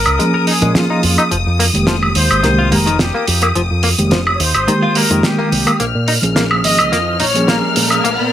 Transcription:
0.00 0.43 A#4 loud
0.00 5.81 D#6 medium
0.06 0.17 C#2 medium
0.06 closed hi-hat medium
0.06 high woodblock medium
0.19 0.58 F3 medium
0.19 0.24 G#3 medium
0.19 0.59 A#3 medium
0.19 0.59 C#4 medium
0.19 0.59 G#4 loud
0.19 closed hi-hat medium
0.34 0.44 A#4 medium
0.47 0.52 D#4 medium
0.47 0.73 G#4 medium
0.47 open hi-hat medium
0.61 0.73 A#2 loud
0.61 1.29 F3 medium
0.61 0.72 G#3 medium
0.61 1.30 A#3 medium
0.61 1.30 C#4 medium
0.61 1.30 G#4 medium
0.61 closed hi-hat medium
0.75 1.31 F4 medium
0.75 snare loud
0.75 closed hi-hat medium
0.90 1.00 D#4 medium
1.03 1.15 F2 medium
1.03 open hi-hat loud
1.18 1.22 D#4 medium
1.18 closed hi-hat medium
1.18 high woodblock medium
1.31 1.43 F1 medium
1.31 1.36 F3 medium
1.31 closed hi-hat medium
1.46 1.69 F2 loud
1.60 1.64 A#3 medium
1.60 open hi-hat loud
1.73 2.12 F1 medium
1.73 2.40 D#3 medium
1.73 2.40 G#3 medium
1.73 2.41 A#3 medium
1.73 2.41 G4 medium
1.73 closed hi-hat medium
1.87 1.95 F3 medium
1.87 snare loud
1.87 closed hi-hat medium
2.03 high woodblock medium
2.15 2.28 D#2 loud
2.15 2.68 C5 loud
2.15 open hi-hat loud
2.31 2.41 G#1 medium
2.31 closed hi-hat medium
2.31 high woodblock medium
2.43 2.73 C2 medium
2.43 2.68 D#3 medium
2.43 2.48 D#3 medium
2.43 2.68 G#3 medium
2.43 2.69 A#3 medium
2.43 2.69 G4 loud
2.43 snare soft
2.43 closed hi-hat medium
2.59 2.68 F4 medium
2.71 3.10 F1 medium
2.71 2.86 D#3 medium
2.71 2.86 G#3 medium
2.71 2.76 A#3 medium
2.71 2.87 A#3 medium
2.71 2.87 G4 loud
2.71 3.00 A#4 medium
2.71 open hi-hat loud
2.86 2.96 D#3 medium
2.86 closed hi-hat medium
2.99 3.56 G4 medium
2.99 snare loud
2.99 closed hi-hat medium
3.15 3.24 A#3 medium
3.28 3.51 F2 medium
3.28 open hi-hat loud
3.42 3.46 A#3 medium
3.42 closed hi-hat medium
3.42 high woodblock medium
3.55 3.68 F1 loud
3.55 3.60 F3 medium
3.55 closed hi-hat medium
3.71 3.93 F2 loud
3.83 3.88 A#3 medium
3.83 open hi-hat loud
3.98 4.36 F1 medium
3.98 4.12 D#3 medium
3.98 4.12 G#3 medium
3.98 4.12 A#3 medium
3.98 4.12 G4 medium
3.98 closed hi-hat medium
4.11 4.19 F3 medium
4.11 snare loud
4.11 closed hi-hat medium
4.27 high woodblock medium
4.33 4.40 C#5 medium
4.40 4.52 D#2 loud
4.40 4.96 C5 loud
4.40 open hi-hat loud
4.54 4.65 G#1 medium
4.54 closed hi-hat medium
4.54 high woodblock medium
4.67 5.07 D#3 medium
4.67 4.72 D#3 medium
4.67 5.07 G#3 medium
4.67 5.07 A#3 medium
4.67 5.08 G4 loud
4.67 closed hi-hat medium
4.83 4.93 F4 medium
4.95 5.00 A#3 medium
4.95 5.24 A#4 loud
4.95 open hi-hat loud
5.10 5.21 F2 loud
5.10 5.78 D#3 medium
5.10 5.21 D#3 medium
5.10 5.78 G#3 medium
5.10 5.79 A#3 medium
5.10 5.79 G4 medium
5.10 closed hi-hat medium
5.23 5.80 G4 medium
5.23 snare loud
5.23 closed hi-hat medium
5.39 5.49 A#3 medium
5.52 5.64 C2 medium
5.52 open hi-hat loud
5.67 5.71 A#3 medium
5.67 closed hi-hat medium
5.67 high woodblock medium
5.79 5.92 A#1 medium
5.79 5.84 A#3 medium
5.79 8.33 F6 medium
5.79 closed hi-hat medium
5.79 riser medium
5.95 6.17 A#2 medium
6.08 6.13 D#4 medium
6.08 open hi-hat loud
6.22 6.60 A#1 medium
6.22 6.89 F3 medium
6.22 6.89 A#3 medium
6.22 6.89 C#4 medium
6.22 6.90 G#4 medium
6.22 closed hi-hat medium
6.36 6.43 A#3 medium
6.36 snare loud
6.36 closed hi-hat medium
6.51 high woodblock medium
6.64 6.76 G#1 loud
6.64 7.16 D#5 loud
6.64 open hi-hat loud
6.79 6.90 C#2 medium
6.79 closed hi-hat medium
6.79 high woodblock medium
6.92 7.22 F2 medium
6.92 6.97 A#3 medium
6.92 snare soft
6.92 closed hi-hat medium
7.20 7.58 A#1 loud
7.20 7.25 D#4 medium
7.20 7.48 C#5 loud
7.20 open hi-hat loud
7.34 8.01 F3 medium
7.34 8.01 A#3 medium
7.34 8.01 C#4 medium
7.34 8.02 G#4 medium
7.34 closed hi-hat medium
7.48 7.56 A#3 medium
7.48 8.04 A#4 medium
7.48 snare loud
7.48 closed hi-hat medium
7.76 7.99 A#2 medium
7.76 open hi-hat loud
7.90 closed hi-hat medium
7.90 high woodblock medium
8.04 8.16 A#1 loud
8.04 8.09 A#3 medium
8.04 closed hi-hat medium
8.19 8.33 A#2 loud

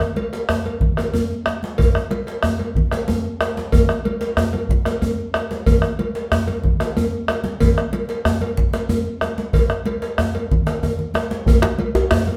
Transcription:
0.00 bombo rim medium
0.00 djembe slap soft
0.00 djembe tone medium
0.16 cowbell soft
0.16 high conga medium
0.33 cowbell soft
0.33 djembe slap medium
0.49 bombo rim medium
0.49 djembe tone medium
0.49 djembe bass medium
0.66 cowbell soft
0.66 high conga soft
0.80 bombo low medium
0.80 djembe slap soft
0.80 low conga medium
0.97 bombo rim medium
0.97 cowbell soft
0.97 djembe slap soft
0.97 djembe tone medium
1.14 cowbell soft
1.14 high conga medium
1.14 djembe bass medium
1.31 djembe slap soft
1.46 bombo rim medium
1.46 djembe slap soft
1.46 djembe tone medium
1.46 high conga soft
1.63 djembe slap medium
1.63 high conga medium
1.78 bombo low medium
1.78 cowbell medium
1.78 djembe slap soft
1.78 high conga soft
1.78 low conga medium
1.78 djembe bass medium
1.95 bombo rim medium
1.95 high conga soft
1.95 djembe tone medium
2.11 bombo rim soft
2.11 cowbell soft
2.11 djembe slap soft
2.11 high conga medium
2.27 cowbell soft
2.27 djembe slap medium
2.43 bombo rim medium
2.43 djembe tone medium
2.43 djembe bass medium
2.59 cowbell soft
2.59 high conga medium
2.75 bombo low medium
2.75 low conga medium
2.92 bombo rim medium
2.92 cowbell soft
2.92 djembe slap medium
2.92 djembe tone medium
2.92 high conga soft
3.08 cowbell soft
3.08 high conga medium
3.08 djembe bass medium
3.25 high conga soft
3.41 bombo rim medium
3.41 cowbell soft
3.41 djembe tone medium
3.57 djembe slap medium
3.57 high conga medium
3.72 bombo low medium
3.72 cowbell medium
3.72 low conga medium
3.72 djembe bass medium
3.89 bombo rim medium
3.89 djembe slap soft
3.89 djembe tone medium
4.05 cowbell soft
4.05 high conga medium
4.21 cowbell soft
4.21 djembe slap medium
4.37 bombo rim medium
4.37 djembe tone medium
4.37 djembe bass medium
4.53 cowbell soft
4.53 high conga medium
4.69 bombo low medium
4.69 djembe slap soft
4.69 low conga medium
4.85 bombo rim medium
4.85 cowbell soft
4.85 djembe slap medium
4.85 djembe tone medium
5.02 cowbell soft
5.02 high conga medium
5.02 djembe bass medium
5.19 djembe slap soft
5.34 bombo rim medium
5.34 cowbell soft
5.34 djembe slap soft
5.34 djembe tone medium
5.34 high conga soft
5.51 djembe slap medium
5.51 high conga medium
5.66 bombo low medium
5.66 cowbell medium
5.66 djembe bass medium
5.66 low conga medium
5.82 bombo rim medium
5.82 djembe slap soft
5.82 djembe tone medium
5.99 cowbell soft
5.99 high conga medium
6.15 cowbell soft
6.15 djembe slap medium
6.32 bombo rim loud
6.32 djembe tone medium
6.32 djembe bass medium
6.47 cowbell soft
6.47 high conga medium
6.64 bombo low medium
6.64 djembe slap soft
6.64 low conga medium
6.80 bombo rim medium
6.80 cowbell soft
6.80 djembe slap medium
6.80 djembe tone medium
6.97 cowbell medium
6.97 high conga medium
6.97 djembe bass medium
7.13 djembe slap soft
7.28 bombo rim medium
7.28 cowbell soft
7.28 djembe slap soft
7.28 high conga soft
7.28 djembe tone medium
7.44 djembe slap medium
7.44 high conga medium
7.60 bombo low medium
7.60 cowbell medium
7.60 djembe bass medium
7.60 low conga medium
7.77 bombo rim medium
7.77 djembe slap soft
7.77 djembe tone medium
7.93 cowbell soft
7.93 high conga medium
8.09 cowbell soft
8.09 djembe slap medium
8.25 bombo rim medium
8.25 djembe tone medium
8.25 djembe bass medium
8.41 cowbell soft
8.41 high conga soft
8.57 bombo low medium
8.57 djembe slap soft
8.57 low conga medium
8.73 bombo rim medium
8.73 cowbell soft
8.73 djembe slap medium
8.73 djembe tone medium
8.89 cowbell soft
8.89 high conga medium
8.89 djembe bass medium
9.05 djembe slap soft
9.21 bombo rim medium
9.21 cowbell soft
9.21 djembe slap soft
9.21 djembe tone medium
9.21 high conga soft
9.38 djembe slap soft
9.38 high conga medium
9.53 bombo rim soft
9.53 bombo low medium
9.53 cowbell medium
9.53 djembe slap soft
9.53 high conga soft
9.53 low conga medium
9.53 djembe bass medium
9.70 bombo rim medium
9.70 djembe slap soft
9.70 djembe tone soft
9.86 cowbell soft
9.86 djembe slap soft
9.86 high conga medium
10.02 bombo rim soft
10.02 cowbell soft
10.02 djembe slap medium
10.18 bombo rim medium
10.18 djembe tone medium
10.18 djembe bass medium
10.35 cowbell soft
10.35 high conga medium
10.51 bombo low medium
10.51 djembe slap soft
10.51 low conga medium
10.67 bombo rim medium
10.67 cowbell soft
10.67 djembe slap medium
10.67 djembe tone medium
10.67 low conga soft
10.83 bombo rim soft
10.83 cowbell soft
10.83 djembe slap soft
10.83 djembe bass medium
10.83 low conga soft
10.99 djembe slap soft
10.99 low conga medium
11.14 bombo rim medium
11.14 cowbell soft
11.14 high conga medium
11.14 djembe tone medium
11.31 djembe slap medium
11.31 high conga medium
11.46 bombo low loud
11.46 cowbell medium
11.46 low conga medium
11.46 djembe bass medium
11.62 bombo rim loud
11.62 djembe slap medium
11.62 djembe slap soft
11.62 djembe tone medium
11.79 cowbell soft
11.79 high conga medium
11.95 cowbell soft
11.95 djembe slap medium
11.95 djembe tone medium
12.11 bombo rim loud
12.11 djembe slap medium
12.11 djembe tone medium
12.11 djembe bass loud
12.27 cowbell soft
12.27 high conga soft

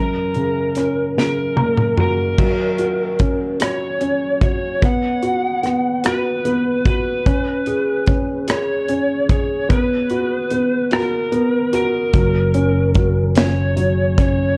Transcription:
0.00 2.34 F#2 medium
0.00 1.13 A#4 medium
0.34 1.15 C#3 soft
0.34 closed hi-hat soft
0.75 2.35 C#4 soft
0.75 cross-stick soft
0.75 closed hi-hat medium
1.17 2.35 C#3 soft
1.17 1.99 A#4 medium
1.17 snare soft
1.57 2.36 A#3 soft
1.57 2.34 A#5 medium
1.57 high tom medium
1.78 mid tom medium
1.97 2.37 F#4 soft
1.97 3.67 A#4 medium
1.97 mid tom medium
2.38 4.78 F#3 medium
2.38 kick medium
2.38 crash medium
2.78 3.59 F#4 soft
2.78 closed hi-hat soft
3.19 3.99 C#4 soft
3.19 kick medium
3.19 closed hi-hat soft
3.60 4.40 F#4 soft
3.60 4.39 C#5 medium
3.60 cross-stick medium
3.60 closed hi-hat medium
4.01 4.80 C#4 soft
4.01 closed hi-hat soft
4.41 4.81 F#4 soft
4.41 4.84 C#5 medium
4.41 kick medium
4.41 closed hi-hat soft
4.82 5.62 B3 medium
4.82 6.09 F#5 medium
4.82 kick medium
4.82 closed hi-hat medium
5.22 6.03 F#4 medium
5.22 closed hi-hat soft
5.63 6.44 B3 soft
5.63 cross-stick soft
5.63 closed hi-hat soft
6.04 6.84 F#4 soft
6.04 6.87 B4 medium
6.04 cross-stick medium
6.04 closed hi-hat medium
6.45 7.24 B3 soft
6.45 closed hi-hat soft
6.86 7.25 F#4 soft
6.86 8.54 B4 medium
6.86 kick medium
6.86 closed hi-hat soft
7.26 8.06 C#4 medium
7.26 kick medium
7.26 closed hi-hat medium
7.66 8.46 G#4 medium
7.66 closed hi-hat soft
8.06 8.87 C#4 medium
8.06 kick medium
8.06 closed hi-hat soft
8.47 9.27 G#4 soft
8.47 9.26 C#5 medium
8.47 cross-stick loud
8.47 closed hi-hat medium
8.88 9.68 C#4 soft
8.88 closed hi-hat soft
9.29 9.69 G#4 medium
9.29 9.72 C#5 medium
9.29 kick medium
9.29 closed hi-hat medium
9.69 10.50 B3 medium
9.69 10.93 B4 medium
9.69 kick medium
9.69 closed hi-hat medium
10.10 10.91 F#4 medium
10.10 closed hi-hat soft
10.50 11.30 B3 soft
10.50 closed hi-hat soft
10.91 11.71 F#4 soft
10.91 11.74 A#4 medium
10.91 cross-stick loud
10.91 closed hi-hat medium
11.32 12.11 B3 medium
11.32 closed hi-hat soft
11.73 12.13 F#4 medium
11.73 13.42 A#4 medium
11.73 closed hi-hat medium
12.14 14.55 F#1 medium
12.14 12.94 F#3 medium
12.14 kick medium
12.14 closed hi-hat medium
12.54 13.35 C#4 medium
12.54 closed hi-hat soft
12.95 13.75 F#3 soft
12.95 kick medium
12.95 closed hi-hat soft
13.36 14.16 C#4 soft
13.36 14.19 C#5 medium
13.36 snare loud
13.36 closed hi-hat medium
13.76 14.56 F#3 soft
13.76 closed hi-hat soft
14.18 14.57 C#4 medium
14.18 14.57 C#5 medium
14.18 kick medium
14.18 closed hi-hat medium

